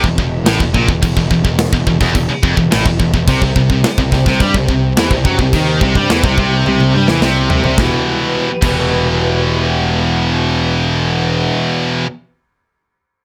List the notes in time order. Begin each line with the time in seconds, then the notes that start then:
0.03 E1 E2, kick
0.18 E1 E2, kick
0.46 A1 A2, snare, crash
0.60 E1 E2, kick
0.74 A#1 A#2, kick
0.88 E1 E2, kick
1.02 E1 E2, kick, crash
1.17 E1 E2, kick
1.31 E1 E2, kick
1.44 E1 E2, kick
1.59 snare, crash
1.73 E1 E2, kick
1.87 E1 E2, kick
2.01 E1 E2, kick, snare
2.15 E1 E2, kick, crash
2.30 muted distorted electric guitar stroke, muted picked electric bass stroke
2.43 F1 F2, kick
2.57 E1 E2, kick
2.71 A1 A2, snare, crash
2.86 E1 E2, kick
3.00 E1 E2, kick
3.14 E1 E2, kick
3.27 C2 C3 G3 C4 G4, kick, crash
3.42 C2 C3, kick
3.56 C2 C3, kick
3.70 C2 C3, kick
3.84 muted distorted electric guitar stroke, muted picked electric bass stroke, snare, crash
3.98 C2 C3, kick
4.12 C2 C3, kick, snare
4.26 C2 C3, kick, snare
4.40 G2 G3, kick, crash
4.54 C2 C3, kick
4.68 C2 C3, kick
4.97 E2 E3, snare, crash
5.11 C2 C3, kick
5.25 F#2 F#3, kick
5.39 C2 C3, kick
5.53 D#2 D#3, kick, crash
5.81 C2 C3, kick
5.95 G2 G3, kick
6.10 E2 E3, snare, crash
6.24 C2 C3, kick
6.38 C2 C3, kick
6.66 C2 C3, high tom
6.80 high tom
6.94 G2 G3
7.07 E2 E3, snare
7.22 C2 C3, snare
7.50 C2 C3, floor tom
7.64 C2 C3, floor tom
7.77 E1 E2 B2 E3 G3 B3 G4 B4, kick, snare
7.81 E3
8.61 E1 E2 B2, kick, crash
8.66 E3